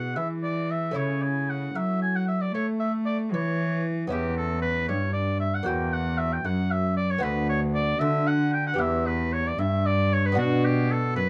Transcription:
0.00 0.14 B2 medium
0.00 0.19 B2 medium
0.00 0.90 G#3 soft
0.00 0.91 E4 soft
0.00 0.16 F#5 medium
0.16 0.92 E3 soft
0.16 0.96 E3 medium
0.16 0.28 E5 medium
0.43 0.72 D5 medium
0.71 0.98 E5 medium
0.91 2.53 A3 soft
0.91 4.06 C#4 soft
0.91 4.06 E4 soft
0.95 1.71 C#3 soft
0.95 1.74 C#3 medium
0.95 1.24 C#5 medium
1.22 1.51 G#5 medium
1.50 1.78 F#5 medium
1.75 2.53 F#3 medium
1.75 2.50 F#3 medium
1.75 2.01 E5 medium
2.02 2.17 G#5 loud
2.16 2.27 F#5 medium
2.28 2.43 E5 medium
2.42 2.54 D5 medium
2.53 3.34 A3 medium
2.53 3.29 A3 medium
2.53 2.66 C#5 medium
2.80 2.92 E5 medium
3.06 3.18 D5 medium
3.33 4.11 E3 medium
3.33 4.08 E3 medium
3.33 3.83 C#5 loud
4.07 5.61 B3 medium
4.07 5.61 C#4 medium
4.07 5.62 E4 medium
4.07 4.35 G4 medium
4.11 4.91 E2 medium
4.11 4.85 E2 medium
4.37 4.61 A4 medium
4.62 4.88 B4 loud
4.88 5.63 G2 medium
4.88 5.66 G2 medium
4.88 5.12 C#5 medium
5.13 5.39 D5 medium
5.40 5.56 E5 medium
5.54 5.65 F#5 medium
5.63 6.43 E2 medium
5.63 7.17 A#3 medium
5.63 7.18 C#4 soft
5.63 7.19 F#4 medium
5.63 5.94 G5 medium
5.67 6.41 E2 medium
5.93 6.20 F#5 loud
6.18 6.34 E5 loud
6.33 6.47 G5 medium
6.44 7.19 F#2 medium
6.44 7.22 F#2 medium
6.44 6.73 F#5 medium
6.71 6.96 E5 loud
6.97 7.12 D5 medium
7.11 7.24 C#5 medium
7.18 7.99 D2 medium
7.18 8.72 B3 medium
7.18 8.74 F#4 medium
7.18 7.49 B4 medium
7.23 7.97 D2 medium
7.49 7.61 C#5 medium
7.74 8.01 D5 loud
8.00 8.78 D3 medium
8.00 8.76 D3 medium
8.00 8.29 E5 loud
8.27 8.53 F#5 loud
8.53 8.66 G5 loud
8.67 8.81 F#5 medium
8.74 10.31 B3 medium
8.74 10.32 G4 medium
8.78 9.54 E2 medium
8.78 9.57 E2 medium
8.78 9.08 E5 loud
9.06 9.34 B4 medium
9.33 9.49 C#5 loud
9.48 9.61 D5 medium
9.58 10.39 G2 medium
9.58 10.34 G2 medium
9.58 9.88 E5 loud
9.86 10.15 D5 loud
10.13 10.27 C#5 loud
10.26 10.38 B4 loud
10.32 11.29 B3 medium
10.32 11.29 D4 medium
10.32 11.29 F#4 medium
10.37 11.12 B2 medium
10.37 11.17 B2 medium
10.37 10.67 F#4 medium
10.65 10.93 G4 medium
10.91 11.15 A4 medium
11.15 11.29 F#2 medium
11.15 11.28 B4 loud

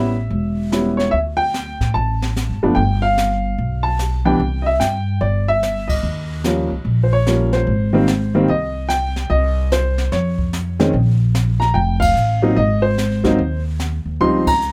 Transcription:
0.00 0.27 A1 medium
0.00 0.14 G3 medium
0.00 0.14 B3 soft
0.00 0.14 C#4 soft
0.00 0.15 E4 medium
0.00 1.02 E5 medium
0.30 1.09 E1 medium
0.30 brush sweep soft
0.72 1.13 G3 soft
0.72 1.13 B3 soft
0.72 1.13 C#4 soft
0.72 1.13 E4 medium
0.72 snare medium
0.72 hi-hat pedal soft
0.97 1.13 C#5 medium
0.97 snare soft
1.11 1.76 D2 medium
1.11 1.17 E5 medium
1.11 brush sweep soft
1.37 1.90 G5 loud
1.54 snare medium
1.54 hi-hat pedal soft
1.80 1.94 A2 medium
1.80 kick soft
1.80 snare soft
1.94 2.46 A1 medium
1.94 2.79 A5 medium
1.94 brush sweep soft
2.22 snare soft
2.37 snare medium
2.37 hi-hat pedal medium
2.49 2.62 G1 medium
2.63 2.76 F#1 medium
2.63 2.76 F3 medium
2.63 2.76 A3 medium
2.63 2.76 B3 medium
2.63 2.76 D4 medium
2.75 3.54 G1 medium
2.75 3.03 G5 medium
2.75 brush sweep soft
3.02 3.87 F5 loud
3.18 snare medium
3.18 hi-hat pedal medium
3.58 4.36 B1 medium
3.58 brush sweep soft
3.83 4.26 A5 medium
3.99 snare medium
3.99 hi-hat pedal soft
4.25 4.38 E3 medium
4.25 4.39 G3 medium
4.25 4.39 B3 medium
4.25 4.39 D4 medium
4.25 4.61 G5 medium
4.40 4.78 C2 medium
4.40 brush sweep soft
4.62 4.68 D#5 medium
4.66 4.81 E5 medium
4.80 5.19 G2 medium
4.80 5.23 G5 medium
4.80 snare medium
4.80 hi-hat pedal medium
5.21 5.99 G1 medium
5.21 5.49 D5 medium
5.21 brush sweep soft
5.48 5.91 E5 loud
5.63 snare medium
5.63 hi-hat pedal medium
5.88 7.21 D#5 medium
5.88 kick medium
5.88 ride medium
6.03 6.67 D#2 medium
6.03 brush sweep medium
6.44 6.69 F3 medium
6.44 6.69 G3 soft
6.44 6.69 A#3 soft
6.44 6.69 C#4 medium
6.44 snare medium
6.44 hi-hat pedal medium
6.70 6.84 C#2 medium
6.85 7.63 A#1 medium
6.85 brush sweep soft
7.04 7.12 C5 medium
7.13 7.54 C#5 medium
7.27 7.67 F3 medium
7.27 7.67 G3 soft
7.27 7.68 A#3 soft
7.27 7.68 C#4 medium
7.27 snare medium
7.27 hi-hat pedal medium
7.53 8.52 C5 medium
7.53 snare soft
7.67 8.45 G#1 medium
7.67 brush sweep soft
7.93 8.06 D#3 medium
7.93 8.07 G3 medium
7.93 8.06 A#3 medium
7.93 8.07 C4 medium
8.08 snare medium
8.08 hi-hat pedal medium
8.34 8.47 D#3 medium
8.34 8.47 G3 medium
8.34 8.48 A#3 medium
8.34 8.48 C4 medium
8.48 9.26 C2 medium
8.48 8.87 D#5 medium
8.48 brush sweep soft
8.89 9.27 G5 medium
8.89 snare medium
8.89 hi-hat pedal medium
9.16 snare soft
9.30 10.08 C2 medium
9.30 9.72 D#5 medium
9.30 brush sweep medium
9.72 10.10 C5 medium
9.72 snare medium
9.72 hi-hat pedal medium
9.98 snare soft
10.12 10.90 F2 medium
10.12 10.75 C#5 medium
10.12 brush sweep soft
10.12 snare soft
10.39 kick medium
10.53 snare medium
10.53 hi-hat pedal soft
10.79 10.92 D#3 medium
10.79 10.92 G#3 medium
10.79 10.92 C4 medium
10.79 10.92 C#4 medium
10.79 snare soft
10.93 11.71 A#1 medium
10.93 brush sweep medium
11.35 snare medium
11.35 hi-hat pedal medium
11.60 11.75 A#5 medium
11.60 snare soft
11.74 12.13 F1 medium
11.74 11.99 G5 medium
11.74 brush sweep soft
12.00 12.58 F5 loud
12.00 kick medium
12.00 crash medium
12.15 12.54 A1 medium
12.15 hi-hat pedal soft
12.42 12.55 F#3 medium
12.42 12.55 A#3 medium
12.42 12.56 C4 medium
12.42 12.56 D#4 medium
12.56 13.35 G#1 medium
12.56 12.81 D#5 medium
12.56 brush sweep soft
12.82 13.60 C5 medium
12.98 snare medium
12.98 hi-hat pedal medium
13.24 13.37 F#3 medium
13.24 13.37 A#3 medium
13.24 13.37 C4 medium
13.24 13.37 D#4 medium
13.24 kick soft
13.24 snare soft
13.39 14.02 D#2 medium
13.39 brush sweep medium
13.80 snare medium
13.80 hi-hat pedal medium
14.05 14.19 D#2 medium
14.20 14.72 C#2 medium
14.20 14.44 F3 medium
14.20 14.44 G3 medium
14.20 14.44 C4 medium
14.20 14.44 D#4 medium
14.20 14.45 C6 loud
14.20 brush sweep medium
14.47 14.72 A#5 loud
14.47 kick medium
14.47 crash medium
14.61 hi-hat pedal soft

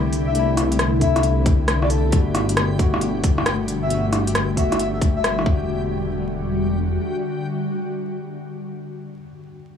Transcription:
0.00 2.11 C2 medium
0.00 0.31 D3 medium
0.00 2.09 D3 medium
0.00 5.69 G3 medium
0.00 0.33 A3 medium
0.00 0.35 A3 medium
0.00 0.39 E4 loud
0.00 2.09 E4 medium
0.00 5.69 G4 medium
0.13 open hi-hat medium
0.27 0.50 E5 medium
0.31 0.98 D3 medium
0.31 2.11 B3 medium
0.31 closed hi-hat medium
0.35 1.00 A3 medium
0.35 1.02 E4 loud
0.57 cross-stick medium
0.57 open hi-hat medium
0.72 closed hi-hat medium
0.79 cross-stick loud
0.79 closed hi-hat soft
1.00 1.12 D3 loud
1.00 1.13 A3 medium
1.00 1.14 E4 loud
1.00 1.25 E5 medium
1.00 kick medium
1.00 open hi-hat medium
1.16 cross-stick medium
1.16 closed hi-hat soft
1.23 closed hi-hat medium
1.46 kick loud
1.46 open hi-hat medium
1.68 cross-stick loud
1.68 closed hi-hat medium
1.82 1.89 D5 medium
1.82 cross-stick medium
1.90 2.18 A4 medium
1.90 open hi-hat medium
2.09 5.45 G1 medium
2.09 2.76 B2 medium
2.09 5.43 A3 medium
2.09 2.78 A3 medium
2.09 kick loud
2.09 closed hi-hat medium
2.13 5.43 B2 medium
2.13 2.80 F#4 medium
2.13 3.89 F#5 medium
2.35 cross-stick medium
2.35 open hi-hat medium
2.49 closed hi-hat medium
2.57 cross-stick loud
2.57 closed hi-hat medium
2.77 2.90 B2 loud
2.77 2.91 A3 medium
2.77 2.92 F#4 loud
2.77 kick loud
2.77 open hi-hat medium
2.94 cross-stick medium
3.01 closed hi-hat medium
3.24 kick loud
3.24 open hi-hat medium
3.38 cross-stick medium
3.46 cross-stick loud
3.46 closed hi-hat medium
3.68 open hi-hat medium
3.82 4.05 E5 medium
3.87 4.53 B2 medium
3.87 5.44 G3 medium
3.87 4.55 A3 medium
3.87 closed hi-hat medium
3.95 4.57 F#4 medium
4.13 cross-stick medium
4.13 open hi-hat medium
4.27 closed hi-hat medium
4.35 cross-stick loud
4.35 closed hi-hat medium
4.55 4.68 B2 loud
4.55 4.69 A3 medium
4.55 4.70 F#4 loud
4.55 4.78 E5 medium
4.55 kick medium
4.55 open hi-hat medium
4.72 cross-stick medium
4.72 closed hi-hat soft
4.78 4.88 E5 medium
4.78 closed hi-hat medium
4.93 4.98 E5 medium
5.01 kick loud
5.01 open hi-hat medium
5.16 5.46 E5 medium
5.24 cross-stick loud
5.24 closed hi-hat medium
5.39 9.13 D3 medium
5.39 cross-stick medium
5.46 6.98 E1 loud
5.46 9.19 D3 medium
5.46 9.19 G3 medium
5.46 9.19 F#4 medium
5.46 kick loud
5.52 9.25 F#4 medium

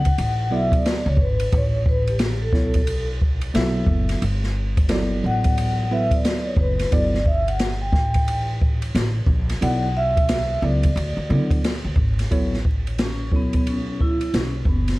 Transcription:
0.00 0.11 C#2 medium
0.00 0.56 F#5 loud
0.05 kick medium
0.05 ride medium
0.18 0.51 A1 medium
0.18 ride medium
0.50 0.78 B1 medium
0.50 1.02 F#3 medium
0.50 1.02 B3 medium
0.50 1.02 E4 medium
0.50 1.02 A4 medium
0.50 1.02 D5 medium
0.50 0.74 E5 medium
0.72 1.09 D5 medium
0.72 kick medium
0.72 ride medium
0.86 snare loud
0.86 hi-hat pedal medium
0.86 ride medium
1.06 1.18 C#2 loud
1.06 1.20 C#5 medium
1.17 1.44 G#1 medium
1.17 kick medium
1.21 1.55 B4 medium
1.40 ride medium
1.52 2.53 A1 loud
1.52 1.86 C#5 loud
1.52 kick loud
1.52 ride medium
1.86 2.09 B4 medium
1.86 kick medium
2.07 2.43 G4 medium
2.07 ride soft
2.19 snare loud
2.19 hi-hat pedal medium
2.19 ride medium
2.42 3.05 A4 medium
2.53 3.51 B1 loud
2.53 2.80 F#3 medium
2.53 2.80 B3 medium
2.53 2.80 E4 medium
2.53 2.80 A4 medium
2.53 2.80 C#5 medium
2.53 kick medium
2.53 snare soft
2.74 kick medium
2.74 ride medium
2.87 ride medium
3.22 kick medium
3.41 ride medium
3.54 3.81 B1 medium
3.54 4.22 F#3 medium
3.54 4.22 B3 medium
3.54 4.22 E4 medium
3.54 4.23 A4 medium
3.54 4.23 E5 loud
3.54 snare loud
3.54 hi-hat pedal medium
3.54 ride medium
3.86 4.14 F#1 medium
3.86 kick medium
4.09 snare soft
4.09 ride medium
4.22 5.19 G1 loud
4.22 ride medium
4.44 snare soft
4.77 kick loud
4.77 ride medium
4.89 5.85 F#3 medium
4.89 5.86 B3 medium
4.89 5.86 E4 medium
4.89 5.86 A4 medium
4.89 5.86 D5 medium
4.89 snare loud
4.89 hi-hat pedal medium
4.89 ride medium
5.24 6.21 A1 medium
5.24 5.88 F#5 loud
5.44 kick medium
5.44 ride medium
5.58 ride medium
5.91 6.87 F#3 medium
5.91 6.87 B3 medium
5.91 6.87 E4 medium
5.91 6.87 A4 medium
5.91 6.88 B4 medium
5.91 6.11 E5 medium
6.11 6.48 D5 medium
6.11 kick loud
6.11 ride medium
6.25 snare loud
6.25 hi-hat pedal medium
6.25 ride medium
6.47 6.59 C#5 medium
6.57 6.84 F#1 medium
6.57 6.90 B4 medium
6.57 kick loud
6.79 snare soft
6.79 ride medium
6.91 7.89 G1 medium
6.91 7.18 F#3 medium
6.91 7.18 B3 medium
6.91 7.18 E4 medium
6.91 7.18 A4 medium
6.91 7.18 D5 medium
6.91 7.27 D5 loud
6.91 kick loud
6.91 ride medium
7.15 snare soft
7.26 7.36 E5 medium
7.26 kick loud
7.48 7.63 F#5 loud
7.48 ride medium
7.59 snare loud
7.59 hi-hat pedal medium
7.59 ride medium
7.82 8.44 G5 loud
7.93 8.90 A1 loud
7.93 kick medium
7.93 snare soft
8.14 kick medium
8.14 ride medium
8.28 ride medium
8.62 kick medium
8.82 ride medium
8.95 9.21 A1 loud
8.95 snare loud
8.95 hi-hat pedal medium
8.95 ride medium
9.26 9.54 A#1 medium
9.26 kick loud
9.49 snare soft
9.49 ride medium
9.61 10.59 B1 loud
9.61 9.88 F#3 medium
9.61 9.88 B3 medium
9.61 9.88 E4 medium
9.61 9.88 A4 medium
9.61 9.88 D5 medium
9.61 9.97 F#5 loud
9.61 ride medium
9.97 10.60 E5 loud
10.17 kick loud
10.17 ride medium
10.29 snare loud
10.29 hi-hat pedal medium
10.29 ride medium
10.62 10.89 C#2 loud
10.62 10.89 F#3 medium
10.62 10.89 B3 medium
10.62 10.89 E4 medium
10.62 10.89 A4 medium
10.62 10.90 D5 medium
10.62 11.27 D5 medium
10.83 kick medium
10.83 ride medium
10.96 11.13 D2 loud
10.96 ride medium
11.17 11.32 D2 medium
11.30 11.57 D3 loud
11.30 11.72 F#3 medium
11.30 11.72 B3 medium
11.30 11.73 E4 medium
11.30 11.73 A4 medium
11.30 11.73 D5 medium
11.51 kick loud
11.51 ride medium
11.64 snare loud
11.64 hi-hat pedal medium
11.64 ride medium
11.84 11.95 D2 loud
11.96 12.23 G#1 medium
11.96 kick loud
12.19 snare soft
12.19 ride medium
12.31 13.32 A1 medium
12.31 12.57 F#3 medium
12.31 12.57 B3 medium
12.31 12.57 E4 medium
12.31 12.58 A4 medium
12.31 12.58 C#5 loud
12.31 kick loud
12.31 ride medium
12.54 snare soft
12.65 kick medium
12.87 ride soft
12.98 13.35 C#4 medium
12.98 snare loud
12.98 hi-hat pedal medium
12.98 ride medium
13.32 14.29 B1 medium
13.32 14.28 F#3 medium
13.32 14.28 B3 medium
13.32 14.28 E4 soft
13.32 14.29 A4 medium
13.32 14.29 C#5 medium
13.32 kick medium
13.36 13.54 B3 medium
13.53 13.62 B3 medium
13.53 kick medium
13.53 ride medium
13.67 14.02 C#4 medium
13.67 ride medium
14.01 14.35 E4 medium
14.01 kick medium
14.21 ride soft
14.34 14.60 B1 medium
14.34 14.48 C#4 medium
14.34 snare loud
14.34 hi-hat pedal soft
14.34 ride medium
14.63 14.93 F#1 medium
14.63 14.68 C#4 medium
14.63 kick medium
14.69 14.99 B3 medium
14.88 snare soft
14.88 ride medium

